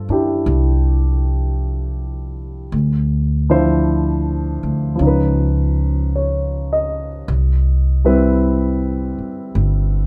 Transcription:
0.00 2.73 F3 soft
0.00 0.10 D4 soft
0.00 2.74 F4 soft
0.00 2.75 A4 medium
0.09 0.44 F#2 medium
0.09 2.73 D4 soft
0.09 2.74 E4 soft
0.09 2.74 G4 soft
0.46 2.69 C2 medium
2.72 4.59 D2 medium
3.50 4.94 F3 medium
3.50 5.01 D4 soft
3.50 5.01 E4 soft
3.50 5.01 C5 medium
4.63 4.98 D2 medium
4.96 7.24 C#2 medium
4.96 7.26 F3 soft
4.96 7.28 C#4 soft
5.02 7.29 D#4 soft
5.07 7.32 B4 soft
6.16 7.06 C#5 soft
6.73 7.53 D#5 soft
7.28 9.14 C2 medium
8.05 10.07 G3 soft
8.05 10.07 C4 soft
8.05 10.07 E4 soft
8.05 10.07 B4 medium
9.19 muted upright bass stroke soft
9.55 10.07 G1 medium

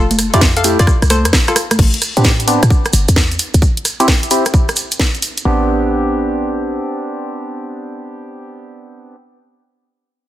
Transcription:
0.00 0.30 F1 loud
0.00 0.17 F4 medium
0.00 0.16 A4 loud
0.11 closed hi-hat medium
0.11 high conga medium
0.11 maracas soft
0.19 cross-stick soft
0.19 open hi-hat loud
0.19 maracas medium
0.34 0.76 F2 medium
0.34 0.41 A3 medium
0.34 0.41 E4 medium
0.34 0.44 F4 medium
0.34 0.41 G4 loud
0.34 0.44 D5 medium
0.34 closed hi-hat medium
0.34 maracas soft
0.41 kick loud
0.41 snare loud
0.41 maracas medium
0.57 0.67 A4 medium
0.57 0.67 F5 medium
0.57 closed hi-hat medium
0.57 maracas soft
0.64 0.78 A3 medium
0.64 0.78 E4 medium
0.64 0.78 G4 medium
0.64 open hi-hat loud
0.64 maracas medium
0.79 0.86 F2 medium
0.79 0.98 F4 medium
0.79 0.98 D5 loud
0.79 cross-stick medium
0.79 closed hi-hat medium
0.79 maracas soft
0.87 kick loud
0.87 cross-stick medium
0.87 maracas medium
1.02 1.27 C2 medium
1.02 cross-stick medium
1.02 closed hi-hat soft
1.02 maracas soft
1.10 1.31 A4 medium
1.10 1.31 C5 loud
1.10 cross-stick medium
1.10 open hi-hat loud
1.10 high conga medium
1.10 maracas loud
1.25 1.32 F2 medium
1.25 cross-stick medium
1.25 closed hi-hat medium
1.25 maracas soft
1.33 kick loud
1.33 cross-stick medium
1.33 snare loud
1.33 maracas soft
1.47 1.67 F4 medium
1.47 1.67 A4 medium
1.47 cross-stick medium
1.47 closed hi-hat soft
1.47 maracas soft
1.56 cross-stick loud
1.56 open hi-hat loud
1.56 maracas medium
1.71 cross-stick medium
1.71 closed hi-hat medium
1.71 high conga medium
1.71 maracas soft
1.79 1.92 A1 loud
1.79 kick loud
1.79 crash medium
1.79 maracas soft
1.94 closed hi-hat medium
2.02 cross-stick soft
2.02 open hi-hat loud
2.02 maracas medium
2.17 2.59 A2 medium
2.17 2.32 B3 medium
2.17 2.32 C4 medium
2.17 2.32 D4 medium
2.17 2.32 G4 medium
2.17 closed hi-hat medium
2.17 maracas soft
2.24 kick loud
2.24 snare loud
2.24 maracas soft
2.40 closed hi-hat soft
2.40 maracas soft
2.48 2.61 B3 medium
2.48 2.61 C4 medium
2.48 2.61 D4 medium
2.48 2.61 G4 medium
2.48 open hi-hat loud
2.48 maracas medium
2.63 2.69 A2 medium
2.63 cross-stick medium
2.63 closed hi-hat medium
2.63 maracas soft
2.70 kick loud
2.70 maracas soft
2.85 cross-stick medium
2.85 closed hi-hat soft
2.85 maracas soft
2.93 3.06 G1 loud
2.93 open hi-hat loud
2.93 maracas medium
3.08 3.37 E2 medium
3.08 closed hi-hat medium
3.08 maracas soft
3.16 kick loud
3.16 snare loud
3.16 maracas soft
3.31 closed hi-hat soft
3.31 maracas soft
3.39 open hi-hat loud
3.39 maracas medium
3.54 3.61 D2 medium
3.54 closed hi-hat medium
3.54 maracas soft
3.62 kick loud
3.62 maracas soft
3.77 closed hi-hat soft
3.85 cross-stick soft
3.85 open hi-hat loud
3.85 maracas medium
4.00 4.07 C4 medium
4.00 4.07 E4 medium
4.00 4.07 G4 medium
4.00 closed hi-hat medium
4.00 maracas soft
4.08 kick loud
4.08 snare loud
4.08 maracas soft
4.23 closed hi-hat soft
4.23 maracas soft
4.31 4.45 C4 medium
4.31 4.45 E4 medium
4.31 4.45 G4 medium
4.31 open hi-hat loud
4.31 maracas medium
4.45 cross-stick medium
4.45 closed hi-hat medium
4.45 maracas soft
4.54 kick loud
4.54 maracas soft
4.69 cross-stick medium
4.69 closed hi-hat soft
4.69 maracas soft
4.76 open hi-hat medium
4.76 maracas medium
4.91 closed hi-hat medium
4.91 maracas soft
5.00 kick loud
5.00 snare loud
5.00 maracas medium
5.14 closed hi-hat soft
5.14 maracas soft
5.22 open hi-hat loud
5.22 maracas medium
5.37 closed hi-hat medium
5.37 maracas soft
5.45 6.79 A1 medium
5.45 9.16 B3 medium
5.45 9.16 C4 medium
5.45 9.16 D4 medium
5.45 9.16 G4 medium

